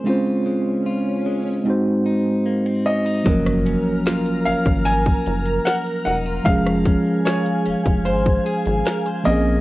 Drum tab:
HH |----------------|xxx-xxxxxxxxxxo-|xxx-xxxxxxxxxxo-|
SD |----------------|-r--o-------o---|-r--o-------o---|
BD |----------------|o------o-o------|o-o----o-o------|